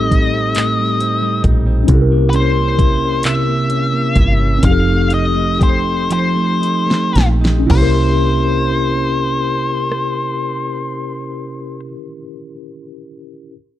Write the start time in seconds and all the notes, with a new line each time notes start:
Already playing: A1 A2 G3 C4 D#4 G4 A4 D#5
0.11 D#4, kick, closed hi-hat
0.34 C4
0.55 A2, clap, closed hi-hat
0.79 G3
1.00 C4, closed hi-hat
1.21 G3
1.43 A#1 D#4, kick, closed hi-hat
1.66 C4
1.84 C#4 E4
1.88 C2 C3 G4, kick, closed hi-hat
1.94 A4
2.01 A#4
2.12 A#3
2.30 C#4 B4, closed hi-hat
2.36 C5
2.57 A#3
2.79 E4, kick, closed hi-hat
3.03 C#4
3.23 C3 E5, clap, closed hi-hat
3.48 A#3
3.69 C#4, closed hi-hat
3.93 A#3
4.16 G1 E4, kick, closed hi-hat
4.39 C#4
4.59 C4
4.63 F1 F3 D#4 G4 F5, kick, closed hi-hat
4.71 A4
4.87 A3
5.10 D#4, closed hi-hat
5.14 D#5
5.34 A3
5.59 G4 C5, kick, closed hi-hat
5.84 D#4
6.10 F3 C5, closed hi-hat
6.36 A3
6.61 D#4, closed hi-hat
6.86 A3
6.91 snare
7.12 A#1 G4, closed hi-hat
7.18 snare
7.41 D#4, snare
7.59 C#4
7.67 C2 C3 A#3 E4, kick, crash
7.71 C#4 G4 C5
7.75 E4
7.82 A#4
9.92 cross-stick